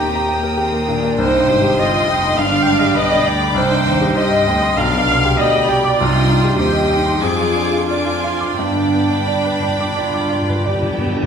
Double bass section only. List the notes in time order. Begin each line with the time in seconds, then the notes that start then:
Already playing: D#2
1.19 C2
1.49 G#1
1.79 G1
2.09 F1
2.37 G1
2.67 G#1
2.96 B1
3.28 D2
3.58 C2
3.87 D#2
4.17 G2
4.48 D2
4.78 B1
5.10 C2
5.40 D2
5.70 C2
5.99 C2
6.59 D#2
7.22 F2
8.60 G2